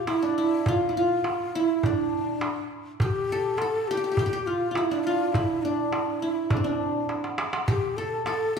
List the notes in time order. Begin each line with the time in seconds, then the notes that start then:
Already playing: F4 G4
0.07 E4, darbuka tek
0.22 D4, darbuka ka
0.38 E4
0.66 F4, darbuka dum
0.81 darbuka ka
0.89 E4
0.97 F4
1.24 darbuka tek
1.55 E4
1.83 D4, darbuka dum
2.41 darbuka tek
2.56 darbuka ka
3.00 G4, darbuka dum
3.15 darbuka ka
3.32 A4
3.58 A4, darbuka tek
3.88 G4
3.97 G4
4.04 G4
4.12 G4
4.17 G4, darbuka dum
4.26 G4
4.33 G4
4.46 F4
4.71 E4 F4
4.75 E4, darbuka tek
4.90 D4, darbuka ka
5.04 F4
5.33 E4, darbuka dum
5.50 darbuka ka
5.62 D4
5.93 darbuka tek
6.20 E4
6.50 D4, darbuka dum
6.57 C4
6.63 D4
6.80 darbuka ka
7.09 darbuka tek
7.24 darbuka ka
7.38 darbuka tek
7.53 darbuka ka
7.67 G4, darbuka dum
7.83 darbuka ka
7.97 A4
8.26 A4, darbuka tek
8.54 A4